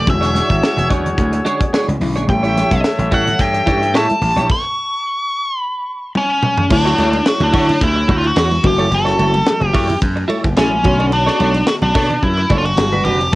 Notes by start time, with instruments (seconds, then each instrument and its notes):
0.06 slap bass E1, fm electric piano D3 F#3 G#3 C#4 E4, horn section F#4 G#4 C#5, muted clean electric guitar stroke, kick, closed hi-hat
0.10 lead electric guitar E5
0.21 clean electric guitar D4 G#4 C#5, snare, closed hi-hat
0.34 clean electric guitar D4 G#4 C#5, snare, closed hi-hat, muted conga, high conga
0.49 slap bass G#1, muted clean electric guitar stroke, kick, closed hi-hat, high conga
0.62 muted clean electric guitar stroke, snare, muted conga
0.77 slap bass E1, muted clean electric guitar stroke, closed hi-hat, low conga
0.90 slap bass E2, clean electric guitar D4 G#4 C#5, kick, closed hi-hat
1.05 muted clean electric guitar stroke, closed hi-hat, low conga
1.18 slap bass D2, kick, closed hi-hat, muted conga
1.33 muted clean electric guitar stroke, closed hi-hat
1.45 clean electric guitar D4 G#4 C#5, closed hi-hat, high conga
1.61 muted clean electric guitar stroke, kick, closed hi-hat
1.73 clean electric guitar D4 G#4 C#5, snare, muted conga
1.88 slap bass C#2, muted clean electric guitar stroke, closed hi-hat, high conga
2.00 slap bass B1, fm electric piano D3 F#3 G#3 C#4 E4, muted clean electric guitar stroke, open hi-hat, muted conga
2.15 slap bass A#1, clean electric guitar D4 G#4 C#5, closed hi-hat, high conga
2.27 slap bass A1, fm electric piano E3 G3 A3 C#4 G4, horn section A4 C#5 E5, lead electric guitar G5, kick, closed hi-hat
2.43 clean electric guitar E4 G4 C#5, closed hi-hat
2.56 clean electric guitar E4 G4 C#5, snare, closed hi-hat, high conga
2.71 slap bass B1, muted clean electric guitar stroke, kick, closed hi-hat, high conga
2.83 muted clean electric guitar stroke, snare, muted conga
2.98 slap bass A1, muted clean electric guitar stroke, closed hi-hat, low conga
3.11 slap bass A2, clean electric guitar E4 G4 C#5, lead electric guitar F#5, kick, closed hi-hat, muted conga
3.26 muted clean electric guitar stroke, closed hi-hat, low conga
3.39 slap bass G2, lead electric guitar G5, kick, closed hi-hat, muted conga
3.54 muted clean electric guitar stroke, closed hi-hat
3.66 slap bass G2, clean electric guitar E4 G4 C#5, kick, closed hi-hat, muted conga, high conga
3.82 muted clean electric guitar stroke, closed hi-hat
3.94 slap bass A2, clean electric guitar E4 G4 C#5, lead electric guitar A5, snare, muted conga
4.09 muted clean electric guitar stroke, closed hi-hat, high conga
4.21 slap bass A1, muted clean electric guitar stroke, open hi-hat, muted conga
4.36 slap bass A#1, clean electric guitar E4 G4 C#5, closed hi-hat, high conga
4.50 lead electric guitar C#6, kick, crash
5.58 lead electric guitar B5
6.15 lead electric guitar C#4, high tom
6.43 mid tom
6.57 floor tom
6.69 slap bass D2, fm electric piano D3 F#3 A3 E4 C#5, lead electric guitar D4, muted clean electric guitar stroke, kick, crash
6.85 clean electric guitar E4 F#4 C#5, snare, ride
6.98 slap bass D2, clean electric guitar E4 F#4 C#5, snare, ride, muted conga, high conga
7.12 muted clean electric guitar stroke, ride, high conga
7.26 lead electric guitar F#4, muted clean electric guitar stroke, snare, ride
7.40 slap bass D2, lead electric guitar D4, muted clean electric guitar stroke, ride, low conga
7.52 slap bass D3, clean electric guitar E4 F#4 C#5, kick, open hi-hat, ride
7.68 muted clean electric guitar stroke, ride, low conga
7.81 slap bass D2, lead electric guitar E4, kick, hi-hat pedal, ride, muted conga
7.96 muted clean electric guitar stroke
8.08 slap bass D2, clean electric guitar E4 F#4 C#5, kick, ride, high conga
8.18 lead electric guitar F4
8.22 muted clean electric guitar stroke, ride
8.27 lead electric guitar F#4
8.36 slap bass E2, clean electric guitar E4 F#4 C#5, snare, ride
8.50 muted clean electric guitar stroke, ride, high conga
8.62 slap bass F#1, fm electric piano E3 F#3 A3 C#4 F#4, muted clean electric guitar stroke, kick, ride, muted conga, low conga
8.67 lead electric guitar G4
8.78 clean electric guitar E4 A4 C#5, ride
8.90 slap bass F#1, lead electric guitar A4, muted clean electric guitar stroke, ride, muted conga
9.05 clean electric guitar E4 A4 C#5, snare, ride
9.17 slap bass F#1, clean electric guitar E4 A4 C#5, ride, muted conga, high conga
9.33 muted clean electric guitar stroke, ride, high conga
9.46 muted clean electric guitar stroke, snare, ride, muted conga
9.60 slap bass F#1, muted clean electric guitar stroke, ride, low conga
9.67 lead electric guitar G4
9.73 slap bass F#2, clean electric guitar E4 A4 C#5, kick, open hi-hat, ride, muted conga
9.89 muted clean electric guitar stroke, ride, low conga
10.01 slap bass F#2, kick, hi-hat pedal, ride, muted conga
10.16 muted clean electric guitar stroke, ride
10.28 clean electric guitar E4 A4 C#5, ride, high conga
10.44 slap bass F#1, muted clean electric guitar stroke, kick, ride
10.56 slap bass A1, fm electric piano E3 F#3 A3 C#4 F#4, lead electric guitar C#4, clean electric guitar E4 A4 C#5, snare, ride, muted conga
10.71 muted clean electric guitar stroke, ride, high conga
10.83 slap bass B1, fm electric piano D3 A3 B3 F#4 C#5, muted clean electric guitar stroke, kick, ride, low conga
10.99 clean electric guitar D4 A4 C#5, ride
11.12 lead electric guitar D4, muted clean electric guitar stroke, ride, muted conga
11.26 clean electric guitar D4 A4 C#5, snare
11.39 slap bass B1, clean electric guitar D4 A4 C#5, ride, high conga
11.54 muted clean electric guitar stroke, ride, high conga
11.67 lead electric guitar F#4, muted clean electric guitar stroke, snare, ride
11.82 slap bass B1, lead electric guitar D4, muted clean electric guitar stroke, low conga
11.95 slap bass B2, clean electric guitar D4 A4 C#5, kick, open hi-hat, ride, muted conga
12.10 muted clean electric guitar stroke, ride, low conga
12.22 slap bass F#2, lead electric guitar E4, kick, hi-hat pedal, ride, muted conga
12.37 muted clean electric guitar stroke, ride
12.50 slap bass F#1, clean electric guitar D4 A4 C#5, kick, ride, muted conga, high conga
12.58 lead electric guitar F4
12.65 lead electric guitar F#4, muted clean electric guitar stroke, ride
12.77 slap bass G1, fm electric piano D3 F#3 G3 B3 F#4, muted clean electric guitar stroke, snare, ride, muted conga
12.93 clean electric guitar D4 F#4 B4, ride, high conga
13.05 slap bass F1, clean electric guitar D4 F#4 B4, lead electric guitar G4, ride, low conga
13.20 muted clean electric guitar stroke, ride
13.31 fm electric piano D3